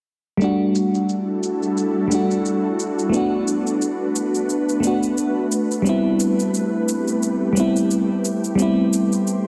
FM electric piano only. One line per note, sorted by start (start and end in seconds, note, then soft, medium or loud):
0.37 2.06 G3 medium
0.37 2.07 A3 medium
0.42 2.08 D4 medium
0.42 2.09 F#4 medium
2.08 3.08 G3 medium
2.08 3.08 A3 medium
2.12 3.10 D4 medium
2.12 3.12 F#4 medium
3.10 4.78 A3 medium
3.10 4.80 B3 medium
3.14 4.81 D4 medium
3.14 4.82 F#4 medium
4.80 5.81 A3 medium
4.80 5.82 B3 medium
4.85 5.83 D4 medium
4.85 5.84 F#4 medium
5.82 7.51 G3 medium
5.82 7.52 B3 medium
5.87 7.53 C4 medium
5.87 7.55 E4 medium
7.53 8.53 G3 medium
7.53 8.55 B3 medium
7.57 8.56 C4 medium
7.57 8.57 E4 medium
8.55 9.47 G3 medium
8.55 9.47 B3 medium
8.60 9.47 C4 medium
8.60 9.47 E4 medium